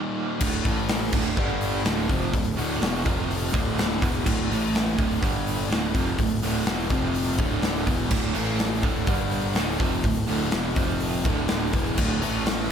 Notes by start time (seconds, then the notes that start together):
Already playing: D#2 A#2 D#3 G3 G4
0.40 D1 D2 A2 D3, kick, crash
0.63 A1 A2 E3 A3, kick, open hi-hat
0.89 snare, open hi-hat
1.13 D1 D2 A2 D3, kick, crash
1.36 G1 G2 D3 G3, kick
1.61 open hi-hat
1.85 D1 D2 A2 D3, snare, open hi-hat
2.08 F1 F2 C3 F3, kick, open hi-hat
2.33 D1 D2 A2, kick, open hi-hat
2.56 D1 D2 A2 D3, open hi-hat
2.80 E1 E2 B2 E3, snare, open hi-hat
3.05 F1 F2 C3 F3, kick, open hi-hat
3.31 open hi-hat
3.52 D1 D2 A2 D3, kick, open hi-hat
3.78 snare, open hi-hat
4.01 E1 E2 B2 E3, kick, open hi-hat
4.25 D1 D2 A2 D3, kick, crash
4.49 A1 A2 E3 A3, open hi-hat
4.75 snare, open hi-hat
4.97 D1 D2 A2 D3, kick, open hi-hat
5.21 G1 G2 D3 G3, kick, open hi-hat
5.47 open hi-hat
5.69 D1 D2 A2 D3, snare, open hi-hat
5.93 F1 F2 C3 F3, kick, open hi-hat
6.18 D1 D2 A2, kick, open hi-hat
6.42 D1 D2 A2 D3, open hi-hat
6.65 E1 E2 B2 E3, snare, open hi-hat
6.89 F1 F2 C3 F3, kick, open hi-hat
7.14 open hi-hat
7.38 D1 D2 A2 D3, kick, open hi-hat
7.62 snare, open hi-hat
7.86 E1 E2 B2 E3, kick, open hi-hat
8.09 D1 D2 A2 D3, kick, crash
8.34 A1 A2 E3 A3, open hi-hat
8.59 snare, open hi-hat
8.82 D1 D2 A2 D3, kick, open hi-hat
9.06 G1 G2 D3 G3, kick, open hi-hat
9.31 open hi-hat
9.55 D1 D2 A2 D3, snare, open hi-hat
9.78 F1 F2 C3 F3, kick, open hi-hat
10.02 D1 D2 A2, kick, open hi-hat
10.26 D1 D2 A2 D3, open hi-hat
10.50 E1 E2 B2 E3, snare, open hi-hat
10.76 F1 F2 C3 F3, kick, open hi-hat
11.00 open hi-hat
11.24 D1 D2 A2 D3, kick, open hi-hat
11.48 snare, open hi-hat
11.72 E1 E2 B2 E3, kick, open hi-hat
11.95 D1 D2 A2 D3, kick, crash
12.20 A1 A2 E3 A3, open hi-hat
12.46 snare, open hi-hat